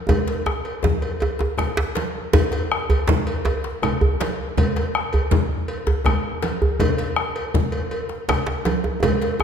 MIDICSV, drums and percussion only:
0, 0, Header, 1, 4, 480
1, 0, Start_track
1, 0, Tempo, 372208
1, 113, Time_signature, 12, 3, 24, 8
1, 12167, End_track
2, 0, Start_track
2, 0, Title_t, "Bombo"
2, 116, Note_on_c, 9, 37, 26
2, 116, Note_on_c, 9, 43, 80
2, 245, Note_off_c, 9, 37, 0
2, 245, Note_off_c, 9, 43, 0
2, 600, Note_on_c, 9, 37, 80
2, 728, Note_off_c, 9, 37, 0
2, 1086, Note_on_c, 9, 43, 95
2, 1215, Note_off_c, 9, 43, 0
2, 1810, Note_on_c, 9, 37, 28
2, 1939, Note_off_c, 9, 37, 0
2, 2044, Note_on_c, 9, 37, 78
2, 2044, Note_on_c, 9, 43, 83
2, 2173, Note_off_c, 9, 37, 0
2, 2173, Note_off_c, 9, 43, 0
2, 2776, Note_on_c, 9, 37, 31
2, 2905, Note_off_c, 9, 37, 0
2, 3014, Note_on_c, 9, 43, 114
2, 3143, Note_off_c, 9, 43, 0
2, 3502, Note_on_c, 9, 37, 105
2, 3631, Note_off_c, 9, 37, 0
2, 3980, Note_on_c, 9, 43, 109
2, 4109, Note_off_c, 9, 43, 0
2, 4940, Note_on_c, 9, 37, 88
2, 4940, Note_on_c, 9, 43, 89
2, 5069, Note_off_c, 9, 37, 0
2, 5069, Note_off_c, 9, 43, 0
2, 5416, Note_on_c, 9, 37, 35
2, 5545, Note_off_c, 9, 37, 0
2, 5902, Note_on_c, 9, 43, 108
2, 6031, Note_off_c, 9, 43, 0
2, 6383, Note_on_c, 9, 37, 107
2, 6512, Note_off_c, 9, 37, 0
2, 6860, Note_on_c, 9, 43, 108
2, 6989, Note_off_c, 9, 43, 0
2, 7818, Note_on_c, 9, 37, 101
2, 7818, Note_on_c, 9, 43, 94
2, 7947, Note_off_c, 9, 37, 0
2, 7947, Note_off_c, 9, 43, 0
2, 8294, Note_on_c, 9, 37, 38
2, 8423, Note_off_c, 9, 37, 0
2, 8763, Note_on_c, 9, 43, 113
2, 8892, Note_off_c, 9, 43, 0
2, 9239, Note_on_c, 9, 37, 108
2, 9368, Note_off_c, 9, 37, 0
2, 9728, Note_on_c, 9, 43, 120
2, 9857, Note_off_c, 9, 43, 0
2, 10695, Note_on_c, 9, 37, 89
2, 10695, Note_on_c, 9, 43, 79
2, 10824, Note_off_c, 9, 37, 0
2, 10824, Note_off_c, 9, 43, 0
2, 11180, Note_on_c, 9, 37, 28
2, 11309, Note_off_c, 9, 37, 0
2, 11655, Note_on_c, 9, 37, 28
2, 11655, Note_on_c, 9, 43, 80
2, 11784, Note_off_c, 9, 37, 0
2, 11784, Note_off_c, 9, 43, 0
2, 12128, Note_on_c, 9, 37, 90
2, 12167, Note_off_c, 9, 37, 0
2, 12167, End_track
3, 0, Start_track
3, 0, Title_t, "Djembe"
3, 114, Note_on_c, 9, 63, 72
3, 114, Note_on_c, 9, 64, 71
3, 243, Note_off_c, 9, 63, 0
3, 243, Note_off_c, 9, 64, 0
3, 356, Note_on_c, 9, 62, 57
3, 485, Note_off_c, 9, 62, 0
3, 595, Note_on_c, 9, 63, 95
3, 724, Note_off_c, 9, 63, 0
3, 1067, Note_on_c, 9, 62, 59
3, 1067, Note_on_c, 9, 63, 61
3, 1067, Note_on_c, 9, 64, 63
3, 1088, Note_off_c, 9, 63, 0
3, 1088, Note_on_c, 9, 63, 102
3, 1196, Note_off_c, 9, 62, 0
3, 1196, Note_off_c, 9, 64, 0
3, 1217, Note_off_c, 9, 63, 0
3, 1306, Note_on_c, 9, 62, 21
3, 1435, Note_off_c, 9, 62, 0
3, 1573, Note_on_c, 9, 63, 101
3, 1702, Note_off_c, 9, 63, 0
3, 1794, Note_on_c, 9, 62, 62
3, 1812, Note_on_c, 9, 63, 98
3, 1923, Note_off_c, 9, 62, 0
3, 1941, Note_off_c, 9, 63, 0
3, 2033, Note_on_c, 9, 62, 22
3, 2033, Note_on_c, 9, 63, 72
3, 2033, Note_on_c, 9, 64, 71
3, 2162, Note_off_c, 9, 62, 0
3, 2162, Note_off_c, 9, 63, 0
3, 2162, Note_off_c, 9, 64, 0
3, 2280, Note_on_c, 9, 62, 23
3, 2285, Note_off_c, 9, 62, 0
3, 2285, Note_on_c, 9, 62, 111
3, 2414, Note_off_c, 9, 62, 0
3, 2519, Note_on_c, 9, 62, 75
3, 2648, Note_off_c, 9, 62, 0
3, 3009, Note_on_c, 9, 63, 107
3, 3013, Note_off_c, 9, 63, 0
3, 3013, Note_on_c, 9, 62, 24
3, 3013, Note_on_c, 9, 63, 67
3, 3013, Note_on_c, 9, 64, 70
3, 3142, Note_off_c, 9, 62, 0
3, 3142, Note_off_c, 9, 63, 0
3, 3142, Note_off_c, 9, 64, 0
3, 3245, Note_on_c, 9, 62, 50
3, 3374, Note_off_c, 9, 62, 0
3, 3735, Note_on_c, 9, 64, 86
3, 3864, Note_off_c, 9, 64, 0
3, 3965, Note_on_c, 9, 62, 67
3, 3965, Note_on_c, 9, 63, 66
3, 3965, Note_on_c, 9, 64, 64
3, 3966, Note_off_c, 9, 62, 0
3, 3966, Note_on_c, 9, 62, 82
3, 4094, Note_off_c, 9, 63, 0
3, 4094, Note_off_c, 9, 64, 0
3, 4095, Note_off_c, 9, 62, 0
3, 4454, Note_on_c, 9, 63, 115
3, 4583, Note_off_c, 9, 63, 0
3, 4697, Note_on_c, 9, 62, 63
3, 4826, Note_off_c, 9, 62, 0
3, 4933, Note_on_c, 9, 64, 74
3, 5062, Note_off_c, 9, 64, 0
3, 5176, Note_on_c, 9, 64, 87
3, 5305, Note_off_c, 9, 64, 0
3, 5423, Note_on_c, 9, 62, 84
3, 5426, Note_off_c, 9, 62, 0
3, 5426, Note_on_c, 9, 62, 76
3, 5555, Note_off_c, 9, 62, 0
3, 5904, Note_on_c, 9, 62, 26
3, 5904, Note_on_c, 9, 63, 91
3, 5904, Note_on_c, 9, 64, 92
3, 6033, Note_off_c, 9, 62, 0
3, 6033, Note_off_c, 9, 63, 0
3, 6033, Note_off_c, 9, 64, 0
3, 6147, Note_on_c, 9, 62, 70
3, 6276, Note_off_c, 9, 62, 0
3, 6627, Note_on_c, 9, 64, 74
3, 6756, Note_off_c, 9, 64, 0
3, 6858, Note_on_c, 9, 62, 79
3, 6858, Note_on_c, 9, 63, 74
3, 6858, Note_on_c, 9, 64, 74
3, 6859, Note_off_c, 9, 63, 0
3, 6859, Note_on_c, 9, 63, 84
3, 6987, Note_off_c, 9, 62, 0
3, 6987, Note_off_c, 9, 64, 0
3, 6988, Note_off_c, 9, 63, 0
3, 7566, Note_on_c, 9, 62, 70
3, 7571, Note_on_c, 9, 64, 76
3, 7695, Note_off_c, 9, 62, 0
3, 7700, Note_off_c, 9, 64, 0
3, 7795, Note_on_c, 9, 63, 84
3, 7795, Note_on_c, 9, 64, 83
3, 7812, Note_off_c, 9, 63, 0
3, 7812, Note_on_c, 9, 63, 80
3, 7924, Note_off_c, 9, 64, 0
3, 7941, Note_off_c, 9, 63, 0
3, 8285, Note_on_c, 9, 62, 89
3, 8414, Note_off_c, 9, 62, 0
3, 8534, Note_on_c, 9, 64, 78
3, 8663, Note_off_c, 9, 64, 0
3, 8764, Note_on_c, 9, 63, 85
3, 8771, Note_off_c, 9, 63, 0
3, 8771, Note_on_c, 9, 62, 28
3, 8771, Note_on_c, 9, 63, 86
3, 8771, Note_on_c, 9, 64, 95
3, 8900, Note_off_c, 9, 62, 0
3, 8900, Note_off_c, 9, 63, 0
3, 8900, Note_off_c, 9, 64, 0
3, 9015, Note_on_c, 9, 62, 56
3, 9144, Note_off_c, 9, 62, 0
3, 9729, Note_on_c, 9, 62, 75
3, 9729, Note_on_c, 9, 63, 69
3, 9729, Note_on_c, 9, 64, 73
3, 9858, Note_off_c, 9, 62, 0
3, 9858, Note_off_c, 9, 63, 0
3, 9858, Note_off_c, 9, 64, 0
3, 10436, Note_on_c, 9, 62, 54
3, 10565, Note_off_c, 9, 62, 0
3, 10685, Note_on_c, 9, 63, 70
3, 10685, Note_on_c, 9, 64, 68
3, 10688, Note_on_c, 9, 62, 94
3, 10814, Note_off_c, 9, 63, 0
3, 10814, Note_off_c, 9, 64, 0
3, 10817, Note_off_c, 9, 62, 0
3, 10916, Note_on_c, 9, 62, 77
3, 11045, Note_off_c, 9, 62, 0
3, 11159, Note_on_c, 9, 62, 75
3, 11159, Note_on_c, 9, 63, 87
3, 11288, Note_off_c, 9, 62, 0
3, 11288, Note_off_c, 9, 63, 0
3, 11402, Note_on_c, 9, 63, 69
3, 11531, Note_off_c, 9, 63, 0
3, 11641, Note_on_c, 9, 63, 104
3, 11643, Note_off_c, 9, 63, 0
3, 11643, Note_on_c, 9, 63, 69
3, 11643, Note_on_c, 9, 64, 63
3, 11772, Note_off_c, 9, 63, 0
3, 11772, Note_off_c, 9, 64, 0
3, 11892, Note_on_c, 9, 62, 53
3, 12021, Note_off_c, 9, 62, 0
3, 12117, Note_on_c, 9, 63, 91
3, 12126, Note_on_c, 9, 62, 22
3, 12167, Note_off_c, 9, 62, 0
3, 12167, Note_off_c, 9, 63, 0
3, 12167, End_track
4, 0, Start_track
4, 0, Title_t, "Drums"
4, 118, Note_on_c, 9, 64, 69
4, 119, Note_on_c, 9, 56, 55
4, 247, Note_off_c, 9, 64, 0
4, 248, Note_off_c, 9, 56, 0
4, 353, Note_on_c, 9, 56, 40
4, 482, Note_off_c, 9, 56, 0
4, 838, Note_on_c, 9, 56, 38
4, 967, Note_off_c, 9, 56, 0
4, 1084, Note_on_c, 9, 63, 64
4, 1084, Note_on_c, 9, 64, 64
4, 1213, Note_off_c, 9, 63, 0
4, 1213, Note_off_c, 9, 64, 0
4, 1318, Note_on_c, 9, 56, 43
4, 1447, Note_off_c, 9, 56, 0
4, 1553, Note_on_c, 9, 56, 42
4, 1682, Note_off_c, 9, 56, 0
4, 2039, Note_on_c, 9, 56, 43
4, 2051, Note_on_c, 9, 63, 18
4, 2051, Note_on_c, 9, 64, 62
4, 2168, Note_off_c, 9, 56, 0
4, 2180, Note_off_c, 9, 63, 0
4, 2180, Note_off_c, 9, 64, 0
4, 2521, Note_on_c, 9, 56, 46
4, 2537, Note_on_c, 9, 63, 79
4, 2650, Note_off_c, 9, 56, 0
4, 2666, Note_off_c, 9, 63, 0
4, 2778, Note_on_c, 9, 63, 22
4, 2907, Note_off_c, 9, 63, 0
4, 3009, Note_on_c, 9, 56, 58
4, 3010, Note_on_c, 9, 64, 92
4, 3138, Note_off_c, 9, 56, 0
4, 3139, Note_off_c, 9, 64, 0
4, 3258, Note_on_c, 9, 56, 52
4, 3387, Note_off_c, 9, 56, 0
4, 3498, Note_on_c, 9, 63, 25
4, 3627, Note_off_c, 9, 63, 0
4, 3739, Note_on_c, 9, 56, 48
4, 3868, Note_off_c, 9, 56, 0
4, 3984, Note_on_c, 9, 63, 82
4, 3984, Note_on_c, 9, 64, 85
4, 4113, Note_off_c, 9, 63, 0
4, 4113, Note_off_c, 9, 64, 0
4, 4215, Note_on_c, 9, 56, 49
4, 4344, Note_off_c, 9, 56, 0
4, 4446, Note_on_c, 9, 56, 51
4, 4575, Note_off_c, 9, 56, 0
4, 4942, Note_on_c, 9, 56, 51
4, 4949, Note_on_c, 9, 64, 76
4, 5071, Note_off_c, 9, 56, 0
4, 5078, Note_off_c, 9, 64, 0
4, 5428, Note_on_c, 9, 56, 51
4, 5432, Note_on_c, 9, 63, 78
4, 5557, Note_off_c, 9, 56, 0
4, 5561, Note_off_c, 9, 63, 0
4, 5900, Note_on_c, 9, 64, 80
4, 5907, Note_on_c, 9, 56, 64
4, 6029, Note_off_c, 9, 64, 0
4, 6036, Note_off_c, 9, 56, 0
4, 6143, Note_on_c, 9, 56, 46
4, 6272, Note_off_c, 9, 56, 0
4, 6373, Note_on_c, 9, 63, 26
4, 6502, Note_off_c, 9, 63, 0
4, 6612, Note_on_c, 9, 56, 47
4, 6741, Note_off_c, 9, 56, 0
4, 6851, Note_on_c, 9, 63, 71
4, 6851, Note_on_c, 9, 64, 73
4, 6980, Note_off_c, 9, 63, 0
4, 6980, Note_off_c, 9, 64, 0
4, 7328, Note_on_c, 9, 56, 50
4, 7457, Note_off_c, 9, 56, 0
4, 7809, Note_on_c, 9, 56, 48
4, 7811, Note_on_c, 9, 64, 64
4, 7938, Note_off_c, 9, 56, 0
4, 7940, Note_off_c, 9, 64, 0
4, 8287, Note_on_c, 9, 56, 55
4, 8300, Note_on_c, 9, 63, 73
4, 8416, Note_off_c, 9, 56, 0
4, 8429, Note_off_c, 9, 63, 0
4, 8771, Note_on_c, 9, 56, 67
4, 8774, Note_on_c, 9, 64, 81
4, 8900, Note_off_c, 9, 56, 0
4, 8903, Note_off_c, 9, 64, 0
4, 9006, Note_on_c, 9, 56, 51
4, 9135, Note_off_c, 9, 56, 0
4, 9256, Note_on_c, 9, 63, 25
4, 9385, Note_off_c, 9, 63, 0
4, 9488, Note_on_c, 9, 56, 46
4, 9617, Note_off_c, 9, 56, 0
4, 9734, Note_on_c, 9, 63, 64
4, 9734, Note_on_c, 9, 64, 65
4, 9863, Note_off_c, 9, 63, 0
4, 9863, Note_off_c, 9, 64, 0
4, 9959, Note_on_c, 9, 56, 51
4, 10088, Note_off_c, 9, 56, 0
4, 10204, Note_on_c, 9, 56, 47
4, 10333, Note_off_c, 9, 56, 0
4, 10692, Note_on_c, 9, 56, 50
4, 10692, Note_on_c, 9, 64, 71
4, 10821, Note_off_c, 9, 56, 0
4, 10821, Note_off_c, 9, 64, 0
4, 11169, Note_on_c, 9, 56, 54
4, 11172, Note_on_c, 9, 63, 87
4, 11298, Note_off_c, 9, 56, 0
4, 11301, Note_off_c, 9, 63, 0
4, 11642, Note_on_c, 9, 56, 67
4, 11656, Note_on_c, 9, 63, 28
4, 11656, Note_on_c, 9, 64, 89
4, 11771, Note_off_c, 9, 56, 0
4, 11785, Note_off_c, 9, 63, 0
4, 11785, Note_off_c, 9, 64, 0
4, 11884, Note_on_c, 9, 56, 50
4, 12013, Note_off_c, 9, 56, 0
4, 12167, End_track
0, 0, End_of_file